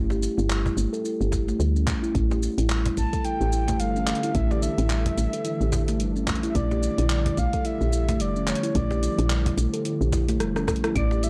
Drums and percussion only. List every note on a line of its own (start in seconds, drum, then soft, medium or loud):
0.10 cajon slap medium
0.10 shaker soft
0.23 shaker medium
0.39 shaker soft
0.50 clap medium
0.50 shaker soft
0.66 cajon bass medium
0.66 shaker soft
0.78 shaker medium
0.94 shaker soft
1.05 shaker soft
1.21 shaker soft
1.32 kick medium
1.32 cajon bass medium
1.32 cajon slap medium
1.32 shaker medium
1.48 cajon slap medium
1.48 shaker soft
1.60 shaker soft
1.76 shaker soft
1.87 kick loud
1.87 cajon bass medium
1.87 clap medium
1.87 shaker medium
2.04 shaker soft
2.15 kick loud
2.15 closed hi-hat medium
2.15 shaker soft
2.31 cajon slap medium
2.31 shaker soft
2.43 shaker medium
2.58 closed hi-hat soft
2.58 shaker soft
2.70 clap medium
2.70 shaker soft
2.86 cajon bass medium
2.86 closed hi-hat medium
2.86 shaker soft
2.97 kick medium
2.97 closed hi-hat soft
2.97 shaker medium
3.13 kick medium
3.13 closed hi-hat soft
3.13 shaker soft
3.25 closed hi-hat soft
3.25 shaker soft
3.41 shaker soft
3.53 shaker medium
3.68 cajon bass medium
3.68 cajon slap medium
3.68 closed hi-hat soft
3.68 shaker soft
3.80 closed hi-hat medium
3.80 shaker soft
3.96 shaker soft
4.07 cajon slap soft
4.07 clap medium
4.07 closed hi-hat soft
4.07 shaker medium
4.15 closed hi-hat soft
4.23 closed hi-hat soft
4.23 shaker soft
4.35 kick loud
4.35 closed hi-hat medium
4.35 shaker soft
4.51 cajon slap medium
4.51 shaker soft
4.63 shaker medium
4.78 closed hi-hat soft
4.78 shaker soft
4.90 clap medium
4.90 shaker soft
5.06 cajon bass medium
5.06 closed hi-hat medium
5.06 shaker soft
5.18 closed hi-hat soft
5.18 shaker medium
5.33 closed hi-hat soft
5.33 shaker soft
5.45 closed hi-hat medium
5.45 shaker soft
5.61 shaker soft
5.72 cajon bass medium
5.72 cajon slap medium
5.72 shaker medium
5.88 cajon slap medium
5.88 closed hi-hat soft
5.88 shaker soft
6.00 closed hi-hat medium
6.00 shaker soft
6.16 shaker soft
6.28 kick loud
6.28 cajon bass medium
6.28 clap medium
6.28 closed hi-hat soft
6.28 shaker medium
6.35 closed hi-hat soft
6.43 closed hi-hat soft
6.43 shaker soft
6.55 kick loud
6.55 closed hi-hat medium
6.55 shaker soft
6.71 cajon slap medium
6.71 shaker soft
6.83 shaker medium
6.98 closed hi-hat soft
6.98 shaker soft
7.10 clap medium
7.10 shaker soft
7.26 cajon bass medium
7.26 closed hi-hat medium
7.26 shaker soft
7.37 kick medium
7.37 closed hi-hat soft
7.37 shaker medium
7.53 kick medium
7.53 closed hi-hat soft
7.53 shaker soft
7.65 closed hi-hat medium
7.65 shaker soft
7.81 shaker soft
7.93 shaker medium
8.09 cajon bass medium
8.09 cajon slap medium
8.09 closed hi-hat soft
8.09 shaker soft
8.20 closed hi-hat medium
8.20 shaker soft
8.36 shaker soft
8.47 cajon slap soft
8.47 clap medium
8.47 closed hi-hat soft
8.47 shaker medium
8.55 closed hi-hat medium
8.63 closed hi-hat soft
8.63 shaker soft
8.75 kick loud
8.75 closed hi-hat medium
8.75 shaker soft
8.91 cajon slap medium
8.91 shaker soft
9.03 closed hi-hat soft
9.03 shaker medium
9.19 closed hi-hat soft
9.19 shaker soft
9.30 clap medium
9.30 shaker soft
9.46 cajon bass medium
9.46 closed hi-hat medium
9.46 shaker soft
9.58 closed hi-hat soft
9.58 shaker medium
9.74 closed hi-hat soft
9.74 shaker soft
9.85 closed hi-hat medium
9.85 shaker soft
10.01 shaker soft
10.12 cajon bass medium
10.12 cajon slap medium
10.12 closed hi-hat soft
10.12 shaker medium
10.28 cajon slap medium
10.28 closed hi-hat soft
10.28 shaker soft
10.40 cross-stick medium
10.40 closed hi-hat medium
10.40 shaker soft
10.56 cross-stick medium
10.56 cajon slap medium
10.56 shaker soft
10.67 cajon bass medium
10.67 kick loud
10.67 cross-stick medium
10.67 cajon slap soft
10.67 closed hi-hat soft
10.67 shaker medium
10.76 closed hi-hat soft
10.84 cross-stick medium
10.84 closed hi-hat soft
10.84 shaker soft
10.95 kick loud
10.95 closed hi-hat medium
10.95 claves medium
10.95 shaker soft
11.11 cajon slap medium
11.11 shaker soft
11.23 closed hi-hat soft
11.23 shaker medium